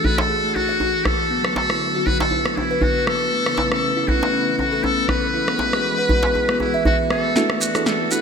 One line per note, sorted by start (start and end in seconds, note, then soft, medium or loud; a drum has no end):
0.00 1.27 E3 medium
0.00 1.29 A3 medium
0.00 1.29 D4 medium
0.00 3.28 F#4 medium
0.05 0.12 A4 medium
0.05 0.20 B4 loud
0.05 djembe bass medium
0.18 0.56 A4 loud
0.18 djembe slap loud
0.30 0.43 G#4 medium
0.44 0.54 A3 medium
0.55 1.07 F#4 medium
0.55 0.68 F#4 medium
0.55 djembe tone medium
0.69 0.75 D5 medium
0.80 0.93 F#4 medium
0.80 djembe tone medium
1.05 1.18 A3 medium
1.05 1.55 A4 loud
1.05 cross-stick medium
1.05 djembe bass medium
1.31 3.30 D3 medium
1.31 3.30 F#3 medium
1.31 1.44 B3 medium
1.31 7.32 B3 medium
1.31 7.32 B4 medium
1.45 1.55 F#3 medium
1.45 cross-stick medium
1.56 2.08 A4 loud
1.56 djembe slap medium
1.56 djembe tone medium
1.70 1.81 E4 medium
1.70 cross-stick medium
1.95 2.05 F#4 medium
2.06 2.14 F#4 medium
2.06 2.19 B4 loud
2.06 djembe bass medium
2.20 2.58 A4 loud
2.20 djembe slap medium
2.31 2.45 E4 medium
2.31 djembe tone medium
2.45 2.56 F#3 medium
2.45 cross-stick medium
2.56 2.69 D4 medium
2.56 2.83 E4 medium
2.56 djembe tone medium
2.71 2.77 B4 medium
2.81 2.95 D4 medium
2.81 3.09 F#4 medium
2.81 djembe bass medium
3.07 3.20 F#3 medium
3.07 3.71 A4 loud
3.07 cross-stick medium
3.32 5.32 C#3 medium
3.32 3.46 A3 medium
3.32 5.32 A3 medium
3.32 5.32 E4 medium
3.46 3.57 E3 medium
3.46 cross-stick medium
3.58 djembe slap medium
3.58 djembe tone medium
3.71 3.82 C#4 medium
3.71 4.09 A4 medium
3.71 cross-stick medium
3.97 4.07 E4 medium
4.08 4.16 E4 medium
4.08 4.58 F#4 loud
4.08 djembe bass medium
4.23 djembe slap medium
4.33 4.47 C#4 medium
4.47 4.58 E3 medium
4.58 4.71 C#4 medium
4.58 4.85 F#4 medium
4.58 djembe tone medium
4.72 4.78 A4 loud
4.83 4.97 C#4 medium
4.83 5.10 A4 medium
4.83 djembe tone medium
5.09 5.21 E3 medium
5.09 6.60 B4 loud
5.09 cross-stick medium
5.09 djembe bass medium
5.34 7.34 E3 medium
5.34 7.34 G#3 medium
5.34 5.47 E4 medium
5.34 7.34 F#4 medium
5.48 5.59 B3 medium
5.48 cross-stick medium
5.59 djembe slap medium
5.59 djembe tone soft
5.73 5.84 G#4 medium
5.73 cross-stick medium
5.98 6.08 B4 medium
6.09 6.17 B4 medium
6.09 djembe bass medium
6.23 djembe slap medium
6.35 6.48 G#4 medium
6.35 djembe tone medium
6.49 6.59 B3 medium
6.49 cross-stick medium
6.60 6.84 E4 medium
6.60 6.73 G#4 medium
6.60 djembe tone medium
6.74 6.80 E5 medium
6.85 6.97 F#4 medium
6.85 6.98 G#4 medium
6.85 djembe bass loud
7.10 7.23 B3 medium
7.10 7.62 A4 medium
7.10 cross-stick medium
7.36 8.21 E3 medium
7.36 8.21 A3 medium
7.36 7.49 D4 medium
7.36 8.21 D4 medium
7.36 7.43 D4 medium
7.36 7.43 E4 medium
7.36 8.21 F#4 medium
7.36 7.43 F#4 medium
7.36 7.43 A4 loud
7.36 snare soft
7.36 shekere soft
7.49 7.60 A3 medium
7.49 cross-stick medium
7.61 7.85 F#4 medium
7.61 shekere medium
7.75 8.09 D4 medium
7.75 8.09 E4 medium
7.75 8.09 F#4 medium
7.75 7.85 G#4 medium
7.75 8.09 A4 medium
7.75 cross-stick medium
7.75 shekere soft
7.86 8.13 A4 medium
7.86 snare soft
7.86 shekere soft
8.00 8.10 A4 medium
8.11 8.18 D4 medium
8.11 8.18 E4 medium
8.11 8.18 F#4 medium
8.11 8.19 A4 medium
8.11 8.18 A4 loud
8.11 8.21 B4 loud
8.11 shekere medium